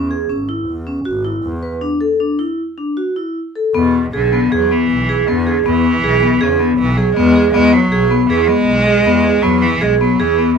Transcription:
Already playing: E2
0.11 G#4
0.30 G#1 C#4
0.49 E4
0.68 E2
0.87 C#4
1.05 G#1 F#4
1.25 E4
1.44 E2
1.63 B4
1.81 D4
2.01 A4
2.20 D4
2.39 E4
2.78 D4
2.97 F#4
3.16 E4
3.55 A4
3.75 E2 B2 B3
4.13 B1 D3 G#4
4.33 B3
4.52 E2 F#3 G#4
4.71 E3 B3
4.91 B1
5.09 G#4
5.28 E2 D3 B3
5.47 G#4
5.66 E2 E3 B3
6.04 B1 G#4
6.22 B3
6.41 E2 C#3 G#4
6.59 D3 B3
6.78 B1 E3
6.97 F#3 G#4
7.15 E2 G#3 B3
7.36 G#4
7.53 E2 G#3 B3
7.72 F#3
7.92 B1 G#4
8.11 B3
8.29 E2 E3 G#4
8.47 G#3 B3
8.67 B1
8.87 G#4
9.05 E2 B3
9.24 G#4
9.42 E2 F#3 B3
9.62 E3
9.81 B1 G#3 G#4
10.00 F#3 B3
10.19 E2 E3 G#4
10.39 B3

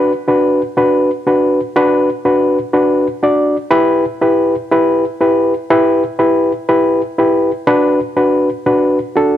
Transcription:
Already playing: D4 F#4 B4
0.28 D4 F#4 B4
0.77 D4 F#4 B4
1.27 D4 F#4 B4
1.76 D4 F#4 B4
2.25 D4 F#4 B4
2.73 D4 F#4 B4
3.23 D4 F#4 D5
3.71 E4 G4 B4
4.21 E4 G4 B4
4.71 E4 G4 B4
5.21 E4 G4 B4
5.70 E4 G4 B4
6.19 E4 G4 B4
6.69 E4 G4 B4
7.18 E4 G4 B4
7.67 D4 F#4 B4
8.16 D4 F#4 B4
8.66 D4 F#4 B4
9.15 D4 F#4 A4

